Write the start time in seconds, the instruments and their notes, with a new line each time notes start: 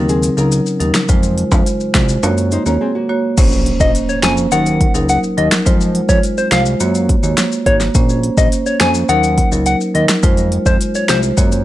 Already playing: analog synth bass D#2, marimba F#3 D#4 A#4
0.09 nylon-string guitar C4 G#4, closed hi-hat, maracas
0.23 closed hi-hat, maracas
0.37 analog synth bass C#2, marimba F#3 D#4 A#4, nylon-string guitar C#4 A#4, maracas
0.52 closed hi-hat, maracas
0.66 maracas
0.80 analog synth bass D#2, marimba F#3 D#4 A#4, closed hi-hat, maracas
0.94 finger snap, snare, maracas
1.09 analog synth bass F2, marimba G#3 F4 C5, kick, closed hi-hat, maracas
1.23 closed hi-hat, maracas
1.38 closed hi-hat
1.52 analog synth bass F2, marimba G#3 F4 C5, kick, high timbale, maracas
1.66 closed hi-hat, maracas
1.80 maracas
1.94 analog synth bass C2, marimba G#3 F4 C5, finger snap, kick, snare, closed hi-hat
2.09 maracas
2.23 analog synth bass F#2, marimba A#3 F#4 C#5, closed hi-hat, high timbale, maracas
2.38 closed hi-hat, maracas
2.51 nylon-string guitar D#4 C5, closed hi-hat, maracas
2.66 analog synth bass D#2, marimba A#3 F#4 C#5, nylon-string guitar C#4 A#4, maracas
2.81 nylon-string guitar C4 G#4
2.95 nylon-string guitar A#3 F#4
3.09 marimba A#3 F#4 C#5
3.37 analog synth bass A#1, marimba A#3 C#4 C5, kick, closed hi-hat, crash, impact, maracas
3.52 maracas
3.66 closed hi-hat
3.80 analog synth bass A#1, marimba A#3 C#4 C5, soft synth lead D#5, kick, maracas
3.95 closed hi-hat, maracas
4.09 soft synth lead C#5, maracas
4.22 analog synth bass F2, marimba A#3 C#4 C5, soft synth lead G#5, finger snap, snare, closed hi-hat, maracas
4.37 maracas
4.52 analog synth bass D#2, marimba F#3 D#4 A#4, soft synth lead F#5, closed hi-hat, maracas
4.66 closed hi-hat, maracas
4.81 kick, closed hi-hat
4.94 analog synth bass C#2, marimba F#3 D#4 A#4, maracas
5.09 soft synth lead F#5, closed hi-hat, maracas
5.24 maracas
5.37 analog synth bass D#2, marimba F#3 D#4 A#4, soft synth lead D#5, closed hi-hat
5.51 finger snap, snare, maracas
5.66 analog synth bass F2, marimba G#3 F4 C5, kick, closed hi-hat, maracas
5.81 maracas
5.95 closed hi-hat
6.09 analog synth bass F2, marimba G#3 F4 C5, soft synth lead C#5, kick, maracas
6.23 closed hi-hat, maracas
6.38 soft synth lead C5, maracas
6.51 analog synth bass C2, marimba G#3 F4 C5, soft synth lead F5, finger snap, snare, closed hi-hat, maracas
6.66 maracas
6.80 analog synth bass F#2, marimba A#3 F#4 C#5, closed hi-hat, maracas
6.95 closed hi-hat, maracas
7.09 kick, closed hi-hat
7.23 analog synth bass D#2, marimba A#3 F#4 C#5, maracas
7.37 finger snap, snare, closed hi-hat, maracas
7.52 maracas
7.66 analog synth bass G#1, marimba A#3 F#4 C#5, soft synth lead C#5, kick, closed hi-hat
7.80 snare, maracas
7.95 analog synth bass A#1, marimba A#3 C#4 C5, kick, closed hi-hat, maracas
8.09 maracas
8.23 closed hi-hat
8.37 analog synth bass A#1, marimba A#3 C#4 C5, soft synth lead D#5, kick, maracas
8.52 closed hi-hat, maracas
8.66 soft synth lead C#5, maracas
8.80 analog synth bass F2, marimba A#3 C#4 C5, soft synth lead G#5, finger snap, snare, closed hi-hat, maracas
8.94 maracas
9.09 analog synth bass D#2, marimba F#3 D#4 A#4, soft synth lead F#5, closed hi-hat, maracas
9.24 closed hi-hat, maracas
9.38 kick, closed hi-hat
9.52 analog synth bass C#2, marimba F#3 D#4 A#4, maracas
9.66 soft synth lead F#5, closed hi-hat, maracas
9.81 maracas
9.95 analog synth bass D#2, marimba F#3 D#4 A#4, soft synth lead D#5, closed hi-hat
10.08 finger snap, snare, maracas
10.23 analog synth bass F2, marimba G#3 F4 C5, kick, closed hi-hat, maracas
10.37 closed hi-hat, maracas
10.52 closed hi-hat
10.66 analog synth bass F2, marimba G#3 F4 C5, soft synth lead C5, kick, maracas
10.81 closed hi-hat, maracas
10.95 soft synth lead C#5, maracas
11.08 analog synth bass C2, marimba G#3 F4 C5, soft synth lead C5, finger snap, snare, closed hi-hat, maracas
11.23 maracas
11.37 analog synth bass F#2, marimba A#3 F#4 C#5, kick, closed hi-hat, maracas
11.52 closed hi-hat, maracas